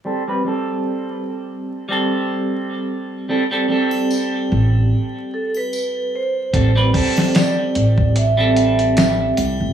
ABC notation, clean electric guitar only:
X:1
M:4/4
L:1/16
Q:"Swing 16ths" 1/4=74
K:Am
V:1 name="Clean electric guitar"
[G,CA] [G,CB] [G,CA]6- [G,CA] [G,CA]6- [G,CA] | [G,CA] [G,CA] [G,CA]12- [G,CA]2 | [G,CA] [G,CB] [G,CA]6- [G,CA] [G,CA]6- [G,CA] |]